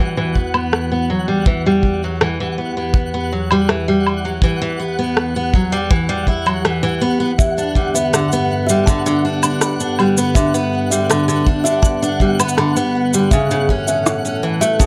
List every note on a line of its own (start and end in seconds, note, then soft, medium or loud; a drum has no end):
0.00 7.35 E2 medium
0.00 0.15 E3 medium
0.00 7.36 E3 medium
0.00 1.43 F#4 medium
0.00 14.86 F#5 medium
0.00 14.86 F#6 medium
0.17 0.34 E3 medium
0.35 0.52 B3 medium
0.35 kick soft
0.54 0.89 B3 medium
0.54 low woodblock medium
0.73 cross-stick medium
0.92 1.08 B3 medium
1.10 1.26 F#3 medium
1.28 1.45 G3 medium
1.46 1.64 E3 medium
1.46 13.28 G4 medium
1.46 kick loud
1.66 2.01 G3 medium
1.83 kick medium
2.04 2.20 F#3 medium
2.21 2.38 E3 medium
2.21 cross-stick loud
2.40 2.56 E3 medium
2.58 2.75 B3 medium
2.77 3.12 B3 medium
2.94 kick loud
3.14 3.30 B3 medium
3.32 3.49 F#3 medium
3.51 3.68 G3 medium
3.51 low woodblock medium
3.69 3.86 E3 medium
3.69 cross-stick medium
3.88 4.23 G3 medium
4.07 low woodblock medium
4.25 4.41 F#3 medium
4.42 4.60 E3 medium
4.42 kick medium
4.62 4.78 E3 medium
4.79 4.96 B3 medium
4.99 5.34 B3 medium
5.17 cross-stick medium
5.36 5.52 B3 medium
5.54 5.71 F#3 medium
5.54 kick medium
5.72 5.89 G3 medium
5.90 6.07 E3 medium
5.90 kick loud
6.09 6.26 G3 medium
6.27 6.45 E4 medium
6.27 kick medium
6.46 6.63 F#3 medium
6.46 low woodblock medium
6.65 6.82 E3 medium
6.65 cross-stick medium
6.83 7.00 E3 medium
7.01 7.18 B3 medium
7.20 7.31 B3 medium
7.37 13.27 G2 medium
7.37 13.27 D3 medium
7.37 13.27 B3 medium
7.37 7.56 E5 medium
7.37 kick loud
7.37 cabasa soft
7.58 7.74 D4 medium
7.58 cabasa soft
7.75 7.93 G3 medium
7.75 kick medium
7.94 8.11 B3 medium
7.94 8.12 E5 medium
7.94 cabasa medium
8.13 8.30 D3 medium
8.13 cross-stick medium
8.13 cabasa medium
8.32 8.67 B3 medium
8.32 cabasa soft
8.67 8.86 G3 medium
8.67 8.85 E5 medium
8.67 cabasa medium
8.86 9.04 D3 medium
8.86 9.04 A5 medium
8.86 kick loud
8.86 cabasa soft
9.06 9.23 D3 loud
9.06 cabasa soft
9.25 9.41 D4 medium
9.43 9.79 D4 medium
9.43 cabasa medium
9.43 low woodblock medium
9.61 9.72 B5 medium
9.61 cross-stick medium
9.61 cabasa soft
9.80 9.97 D4 medium
9.80 cabasa soft
9.99 10.16 G3 medium
9.99 low woodblock medium
10.18 10.34 B3 medium
10.18 cabasa medium
10.35 10.52 D3 medium
10.35 10.53 E5 medium
10.35 kick medium
10.35 cabasa soft
10.54 10.89 B3 medium
10.54 cabasa soft
10.90 11.08 G3 medium
10.90 11.08 E5 medium
10.90 cabasa medium
11.09 11.26 D3 medium
11.09 cross-stick medium
11.09 cabasa medium
11.28 11.45 D3 medium
11.28 cabasa soft
11.47 11.63 D4 medium
11.47 kick medium
11.64 12.00 D4 medium
11.64 11.82 E5 loud
11.64 cabasa medium
11.82 12.01 A5 medium
11.82 kick loud
11.82 cabasa soft
12.03 12.19 D4 medium
12.03 cabasa soft
12.20 12.38 G3 medium
12.20 kick medium
12.40 12.56 B3 loud
12.40 cabasa medium
12.40 low woodblock medium
12.49 cabasa medium
12.57 12.75 D3 medium
12.57 12.68 B5 medium
12.57 cross-stick medium
12.76 13.12 B3 medium
12.76 cabasa soft
13.14 13.30 G3 medium
13.14 cabasa medium
13.31 14.86 A2 medium
13.31 13.49 C#3 medium
13.31 14.86 E3 medium
13.31 14.86 C#4 medium
13.31 14.86 A4 medium
13.31 13.49 E5 medium
13.31 kick loud
13.31 cabasa soft
13.51 13.67 C#3 loud
13.51 cabasa soft
13.69 13.86 C#4 medium
13.69 kick soft
13.88 14.23 C#4 medium
13.88 14.05 E5 medium
13.88 cabasa medium
14.06 cross-stick loud
14.06 cabasa medium
14.25 14.41 C#4 medium
14.25 cabasa soft
14.43 14.60 E3 medium
14.61 14.78 A3 loud
14.61 14.79 E5 medium
14.61 cabasa medium
14.79 14.86 C#3 medium
14.79 14.86 A5 medium
14.79 kick loud
14.79 cabasa soft